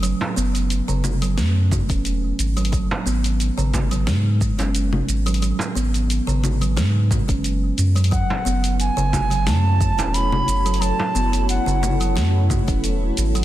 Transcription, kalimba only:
X:1
M:4/4
L:1/16
Q:"Swing 16ths" 1/4=89
K:F#m
V:1 name="Kalimba" clef=bass
F, z B,3 C,2 F, A, z2 C z3 F, | F, z B,3 C,2 F, G, z2 C z3 F, | F, z B,3 C,2 F, G, z2 C z3 F, | F, z B,3 C,2 F, A, z2 C z3 F, |
F, z B,3 C,2 F, A, z2 C z3 F, |]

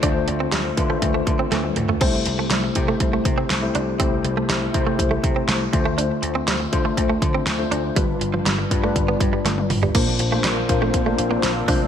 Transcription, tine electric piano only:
X:1
M:4/4
L:1/16
Q:1/4=121
K:C
V:1 name="Tine electric piano"
[A,DFc]4- [A,DFc] z [A,DFB] [A,DFc]6 z3 | [A,DEGc]4- [A,DEGc] z [A,EGc]6 z [A,EGc]2 z | [A,EGc]4- [A,EGc] z [A,EGc] [A,EGc]6 z [A,DFc]2- | [A,DFc]4 z2 [A,DFc]6 z [A,DFc]2 z |
[G,DFB]4- [G,DFB] z [G,DFB] [G,DFB]6 z3 | [_B,DFc]2 z [B,DFc]2 z [B,DFc]2 z [B,DFc]2 [B,DFc]2 z [_A,=A,DFc]2 |]
V:2 name="Tine electric piano" clef=bass
D,4 z12 | C,6 z8 z2 | C,6 z8 D,2- | D,4 z12 |
G,,6 z8 z2 | _B,,6 z8 z2 |]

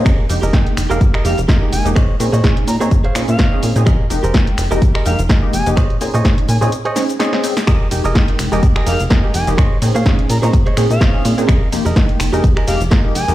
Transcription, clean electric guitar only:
X:1
M:4/4
L:1/16
Q:"Swing 16ths" 1/4=126
K:Fm
V:1 name="Clean electric guitar"
[GABe]2 z [GABe]2 z2 [GABf] z [GABe] z2 [GABe]2 z2 | [Acde]2 z [Acde]2 z2 [Acde] z [Acdf] z2 [Acde]2 z2 | [GABe]2 z [GABc]2 z2 [GABe] z [GABe] z2 [GABe]2 z2 | [Acde]2 z [Acde]2 z2 [Acde] z [Acde] z2 [Acde]2 z2 |
[GABe]2 z [GABe]2 z2 [GABe] z [GABe] z2 [GABe]2 z2 | [Acde]2 z [Acdf]2 z2 [Acde] z [Acde] z2 [Acde]2 z2 | [GABe]2 z [GABe]2 z2 [GABe] z [GABe] z2 [GABe]2 z2 |]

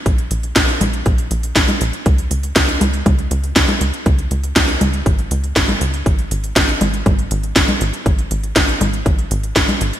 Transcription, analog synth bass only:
X:1
M:4/4
L:1/8
Q:1/4=120
K:Db
V:1 name="Analog synth bass" clef=bass
B,,, B,,, B,,, B,,, B,,, B,,, B,,, B,,, | D,, D,, D,, D,, D,, D,, D,, D,, | D,, D,, D,, D,, A,,, D,, A,,, D,, | A,,, A,,, A,,, A,,, A,,, A,,, A,,, A,,, |
A,,, A,,, A,,, A,,, A,,, A,,, A,,, A,,, |]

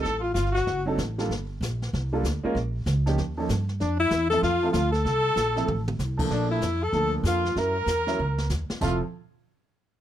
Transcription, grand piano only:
X:1
M:4/4
L:1/8
Q:"Swing" 1/4=192
K:F
V:1 name="Grand piano"
z4 z [^F,CD_EA] z [G,B,D=FA] | z4 z [G,B,DFA] z [_A,B,_DFB] | z3 [F,B,_D_EG] z [F,B,DEA] z2 | z3 [F,A,CEA] z [F,A,CEA] z2 |
z3 [F,A,CEA] z3 [F,A,B,DA]- | [F,A,B,DA]2 z2 [F,B,DA]3 z | [_G,_D_FB] z2 [G,DFB] z4 | [F,CEA] z6 z |]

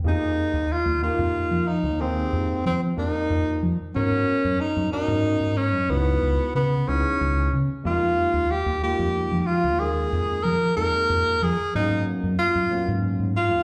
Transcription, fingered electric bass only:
X:1
M:6/8
L:1/16
Q:3/8=62
K:Fm
V:1 name="Fingered electric bass" clef=bass
F,,2 z E,, z E,, z F,,2 F,2 E,,- | E,,2 F,, z F,2 F,, z F,,2 F, z | A,,2 z _G,, z G,, z A,,2 A,,2 G,, | D,,2 D,, z D,2 D,, z D,,2 D, z |
F,,2 z E,, z E,, z F,,2 F,2 E,,- | E,,2 F,, z F,2 F,, z F,,2 F, z | A,,2 z _G,, z G,, z A,,2 A,,2 E,, |]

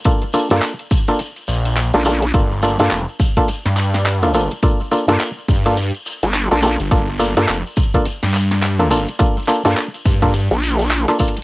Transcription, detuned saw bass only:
X:1
M:4/4
L:1/16
Q:"Swing 16ths" 1/4=105
K:Gm
V:1 name="Detuned saw bass" clef=bass
z8 z2 B,,,3 z3 | G,,,3 z F,,, z4 G,,6 z | z6 G,,3 z6 G,,, | G,,,3 z F,,, z4 G,,6 z |
z6 G,,3 z6 z |]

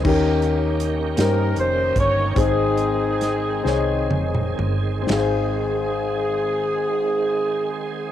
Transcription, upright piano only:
X:1
M:6/8
L:1/16
Q:3/8=45
K:Ab
V:1 name="Upright piano"
[DEGB]4- [DEGB] z [DEGc]4- [DEGc] z | [CEAc]4- [CEAc] z [CEAde]4- [CEAde] z | [CEAc]12 |]
V:2 name="Upright piano" clef=bass
E,6 z6 | A,,6 z6 | A,,,12 |]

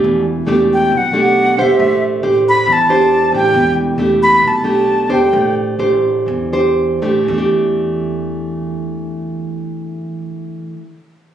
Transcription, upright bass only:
X:1
M:4/4
L:1/8
Q:1/4=130
K:Em
V:1 name="Upright bass" clef=bass
E,,,2 E,,,2 B,,,3 E,,, | A,,,2 A,,,2 E,,3 A,,, | E,,,2 E,,,2 B,,,3 E,,, | A,,,2 A,,,2 E,,3 A,,, |
E,,8- | E,,8 |]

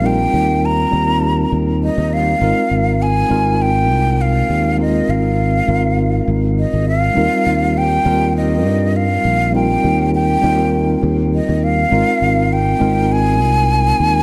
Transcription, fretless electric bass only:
X:1
M:4/4
L:1/16
Q:"Swing 16ths" 1/4=101
K:Eb
V:1 name="Fretless electric bass" clef=bass
B,,, z E,,3 z E,,3 z E,,2 z E,,2 z | A,,, z A,,,3 z A,,,4 C,,3 z E,,2- | E,, z A,,,3 z A,,,3 z A,,,2 z A,,,2 z | E,, z E,,3 z E,,4 G,,3 z B,,,2- |
B,,, z E,,3 z E,,3 z E,,2 z E,,2 z | A,,, z A,,,3 z A,,,4 C,,3 z E,,2 |]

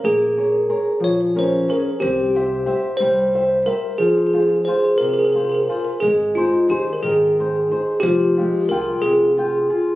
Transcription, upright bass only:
X:1
M:6/8
L:1/8
Q:3/8=60
K:Fm
V:1 name="Upright bass" clef=bass
B,,,3 B,,,3 | C,,3 C,,3 | z6 | [K:Ab] A,,,2 E,, A,,,3 |
F,,,2 C,, F,,,3 |]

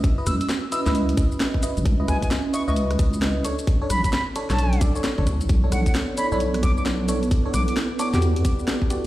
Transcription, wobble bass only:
X:1
M:4/4
L:1/16
Q:"Swing 16ths" 1/4=132
K:Bmix
V:1 name="Wobble bass" clef=bass
z2 C,, z4 C,,3 z4 z G,,, | C,,2 C,, z4 C,,3 C,,4 z2 | z2 B,,, z4 B,,,3 z3 F,,, =D,, B,,, | B,,,2 B,,, z4 B,,,3 B,,,6 |
z2 B,,, z4 E,,3 z6 |]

